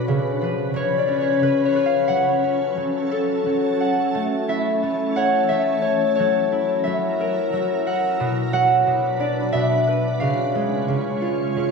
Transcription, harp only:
Already playing: B2 F#3 D4 B4
0.08 C#3
0.41 F3 B4
0.74 C#3 C#5
0.98 D5
1.07 C#4
1.21 C#5
1.41 C#3 B4
1.65 C#5
1.76 B4
1.86 F5
2.08 F#3 F#5
2.44 C#4
2.77 F#3
3.11 A4
3.46 F#3
3.80 F#5
4.15 A3
4.48 E4 E5
4.83 A3
5.16 C#5 F#5
5.49 A3 E5
5.82 C#5 A5
6.16 C#5
6.20 F#3
6.52 E4
6.84 F#3 E5
7.20 A#4
7.53 F#3
7.87 F#5
8.20 B2
8.53 F#3 F#5
8.87 B2
9.20 D4 D5
9.52 B2 E5
9.87 B4
10.20 C#3 F5
10.55 G#3
10.88 C#3
11.22 F4
11.56 C#3

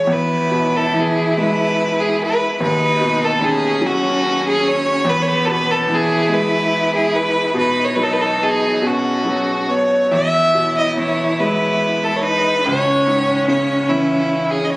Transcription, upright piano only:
0.07 E2
0.51 B2
0.94 E3
1.37 G#3
2.61 D#2
3.01 B2
3.41 D#3
3.81 F#3
5.05 E2
5.47 B2
5.88 E3
6.29 G#3
7.54 B2
7.97 F#3
8.39 B3
8.82 B2
9.25 F#3
9.68 B3
10.12 E2
10.55 B2
10.97 E3
11.40 G#3
12.66 C#2
13.06 G#2
13.48 C#3
13.90 E3

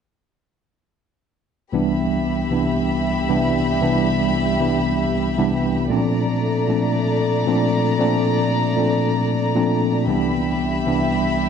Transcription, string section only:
1.74 G4 E5 B5
5.91 A3 D5 A#5
10.08 G4 E5 B5

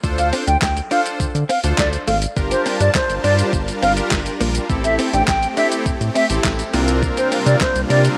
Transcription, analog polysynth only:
0.03 D4 F4 A4 C5
0.91 D4 F4 A4 C5
1.64 D4 F4 A4 C5
2.36 D4 F4 G4 A#4
3.24 D4 F4 G4 C5
3.97 D4 F4 G4 A#4
4.69 C4 E4 G4 A4
5.57 C4 E4 G4 A4
6.30 C4 E4 G4 A4
6.73 C4 D4 F4 A#4
7.90 C4 D4 F4 A#4

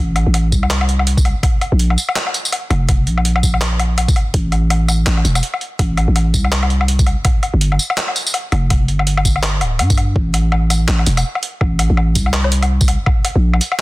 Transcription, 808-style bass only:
Already playing: A1
0.27 A1
0.52 C2
1.72 A#1
2.70 F1
3.07 A#1
4.34 A1
5.06 A1
5.25 E1
5.79 A1
6.08 A1
6.34 C2
7.54 G1
8.52 F1
8.89 G1
9.61 D1
9.79 G2
10.16 A1
10.88 A1
11.07 E1
11.61 A1
11.90 A1
12.16 C2
13.36 A#1

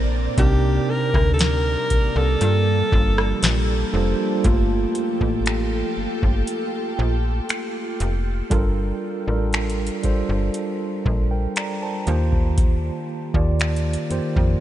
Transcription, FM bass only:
Already playing: A#1
0.38 C2
1.14 D2
1.91 C2
2.16 C2
2.41 G2
2.92 G1
3.43 A#1
3.94 F1
4.45 G1
5.21 A1
5.97 G1
6.23 G1
6.99 A#1
8.01 F1
8.51 G1
9.28 A1
10.04 G1
10.29 G1
11.06 A#1
12.07 D#2
13.34 D#2
14.11 F2
14.36 F2

